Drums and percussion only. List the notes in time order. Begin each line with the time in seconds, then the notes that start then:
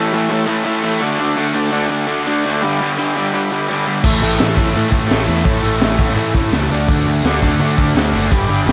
4.04 kick, crash
4.21 open hi-hat
4.39 snare, open hi-hat
4.57 kick, open hi-hat
4.74 open hi-hat
4.92 kick, open hi-hat
5.10 snare, open hi-hat
5.27 open hi-hat
5.45 kick, open hi-hat
5.63 open hi-hat
5.80 snare, open hi-hat
5.98 kick, open hi-hat
6.09 snare
6.16 open hi-hat
6.34 kick, open hi-hat
6.52 snare, open hi-hat
6.70 open hi-hat
6.88 kick, open hi-hat
7.07 open hi-hat
7.24 snare, open hi-hat
7.42 kick, open hi-hat
7.60 open hi-hat
7.78 kick, open hi-hat
7.96 snare, open hi-hat
8.14 open hi-hat
8.32 kick, open hi-hat
8.50 open hi-hat
8.68 snare, open hi-hat